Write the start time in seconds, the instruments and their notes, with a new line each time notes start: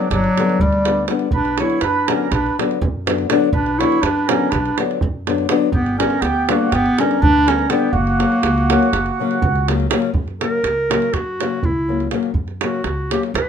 Already playing: clarinet F#3
0.10 upright bass G1, clarinet F#3, accordion D4, davul high, davul low
0.24 davul high
0.38 nylon-string guitar D3 G3 B3 D4, davul high
0.50 davul high
0.59 upright bass D2, clarinet G3, accordion D4, davul low
0.73 davul high
0.85 nylon-string guitar D3 G3 B3 D4, davul high
1.08 nylon-string guitar D3 G3 B3 D4, davul high
1.19 davul high
1.31 upright bass B1, clarinet D4, accordion B4, davul low
1.45 davul high
1.58 nylon-string guitar D3 F#3 B3 D4, clarinet E4, accordion C#5, davul high
1.70 davul high
1.81 upright bass F#2, clarinet D4, accordion B4, davul high
2.07 nylon-string guitar D3 F#3 B3 D4, accordion A#4, davul high
2.12 clarinet C#4
2.31 upright bass B1, clarinet D4, accordion B4, davul high, davul low
2.46 davul high
2.59 nylon-string guitar D3 F#3 B3 D4, davul high
2.71 davul high
2.82 upright bass F#2, davul low
3.06 nylon-string guitar D3 F#3 B3 D4, davul high
3.18 davul high
3.30 nylon-string guitar D3 F#3 B3 D4, davul high
3.53 upright bass B1, clarinet D4, accordion B4, davul low
3.66 davul high
3.79 nylon-string guitar D3 F#3 B3 D4, clarinet E4, accordion C#5, davul high
3.92 davul high
4.00 upright bass F#2, clarinet D4, accordion B4, davul high
4.27 nylon-string guitar D3 F#3 B3 D4, clarinet C#4, accordion A#4, davul high
4.50 upright bass B1, clarinet D4, accordion B4, davul high, davul low
4.66 davul high
4.78 nylon-string guitar D3 F#3 B3 D4, davul high
4.91 davul high
5.01 upright bass F#2, davul low
5.27 nylon-string guitar D3 F#3 B3 D4, davul high
5.38 davul high
5.49 nylon-string guitar D3 F#3 B3 D4, davul high
5.72 upright bass G1, clarinet B3, accordion G4, davul low
5.86 davul high
5.98 nylon-string guitar D3 G3 B3 D4, clarinet C#4, accordion A#4, davul high
6.10 davul high
6.22 upright bass D2, clarinet B3, accordion G4, davul high
6.48 nylon-string guitar D3 G3 B3 D4, clarinet A#3, accordion F#4, davul high
6.72 upright bass G1, clarinet B3, accordion G4, davul high, davul low
6.86 davul high
6.98 nylon-string guitar D3 G3 B3 D4, clarinet C#4, accordion A#4, davul high
7.11 davul high
7.22 upright bass D2, clarinet D4, accordion B4, davul low
7.47 nylon-string guitar D3 G3 B3 D4, clarinet C#4, accordion A#4, davul high
7.59 davul high
7.70 nylon-string guitar D3 G3 B3 D4, clarinet B3, accordion G4, davul high
7.92 upright bass F#1, clarinet A#3, accordion F#4, davul low
8.07 davul high
8.19 nylon-string guitar C#3 F#3 A#3 C#4, davul high
8.32 davul high
8.43 upright bass C#2, davul high
8.58 davul high
8.70 nylon-string guitar C#3 F#3 A#3 C#4, davul high
8.83 davul high
8.93 upright bass F#1, davul high
9.06 davul high
9.20 nylon-string guitar C#3 F#3 A#3 C#4
9.31 davul high
9.42 upright bass C#2, davul low
9.56 davul high
9.68 nylon-string guitar C#3 F#3 A#3 C#4, davul high
9.80 davul high
9.90 nylon-string guitar C#3 F#3 A#3 C#4, davul high
10.02 davul high
10.14 upright bass F#2, davul low
10.28 davul high
10.41 nylon-string guitar C#3 F#3 A#3 C#4, clarinet A#4, davul high
10.64 upright bass C#2, davul high
10.90 nylon-string guitar C#3 F#3 A#3 C#4, davul high
11.02 davul high
11.13 upright bass F#2, clarinet F#4, davul high, davul low
11.40 nylon-string guitar C#3 F#3 A#3 C#4, davul high
11.63 upright bass C#2, clarinet E4, davul low
11.88 nylon-string guitar C#3 F#3 A#3 C#4
12.00 davul high
12.11 nylon-string guitar C#3 F#3 A#3 C#4, davul high
12.23 davul high
12.34 upright bass F#2, davul low
12.48 davul high
12.61 nylon-string guitar C#3 F#3 A#3 C#4, clarinet F#4, davul high
12.84 upright bass C#2, davul high
13.11 nylon-string guitar C#3 F#3 A#3 C#4, clarinet G4, davul high
13.23 davul high
13.34 upright bass F#2, clarinet A#4, davul high, davul low
13.42 clarinet B4